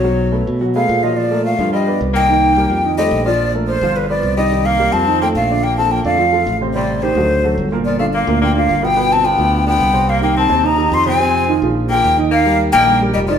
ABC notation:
X:1
M:4/4
L:1/8
Q:1/4=215
K:Bb
V:1 name="Flute"
_d3 z2 f2 e | d2 f2 e2 z g- | g4- g e2 d- | d z c2 =B d2 e- |
e f2 a2 g f2 | g a g f4 z | d2 c4- c z | d f f2 g f2 g- |
g a g3 g3 | f g a2 b2 c' _a- | _a3 z2 g2 z | f2 z g2 z e d |]
V:2 name="Grand piano"
[^F,^F^f]2 [A,A=B]2 [F,Ff] [A,AB]2 [=F,=F=f]- | [F,Ff] [A,AB]2 [F,Ff]2 [=B,=Bd]2 [E,Ee] | [E,Ee]2 [G,GB]2 [E,Ee] [A,Ac]2 [F,Ff]- | [F,Ff] [A,AB]2 [F,Ff]2 [=B,=Bd]2 [E,Ee] |
[E,Ee]2 [G,GB]2 [E,Ee] [A,Ac]2 [D,Dd] | z [F,FA]2 [D,Dd] [F,FA] [F,FA]2 [C,Cc] | [C,Cc]2 [E,EG] [_G,_GA]2 [^F,^FA]2 [B,,B,B]- | [B,,B,B] [D,DF]2 [B,,B,B] [D,DF] [D,DF]2 [_C,_C_c] |
[=B,,=B,=B]2 [D,DF] [D,DF]2 [D,DF]2 [C,Cc]- | [C,Cc] [E,EG]2 [C,Cc] [E,EG] [E,EG]2 [C,Cc] | [C,Cc]2 [E,EF] [F,F_A]2 [F,FA]2 [E,Ee]- | [E,Ee] [G,GB]2 [E,Ee] [G,GB] [G,GB]2 [E,Ee] |]
V:3 name="Tenor saxophone"
_G,3 z2 _A,2 ^F, | F,2 A,2 G,2 z B,- | B,4 z G,2 F,- | F, z F,2 D, F,2 G,- |
G, B,2 C2 B, A,2 | B, C B, A,4 z | G,2 E,2 z4 | F, A, B,2 B, B,2 _C- |
_C =C =B,3 B,3 | B, B, C2 E2 E C- | C3 z2 B,2 z | B,2 z B,2 z G, F, |]
V:4 name="Fingered electric bass" clef=bass
_C,,3 =B,,3 _B,,2- | B,,3 G,,3 C,,2- | C,,3 F,,3 B,,,2- | B,,,3 G,,,3 C,,2- |
C,,3 F,,3 B,,,2- | B,,,3 F,,3 A,,,2- | A,,,3 D,,3 G,,,2- | G,,,3 D,,3 G,,,2- |
G,,,3 D,,3 C,,2- | C,,3 E,,3 F,,2- | F,,3 B,,,3 E,,2- | E,,3 B,,,3 F,,,2 |]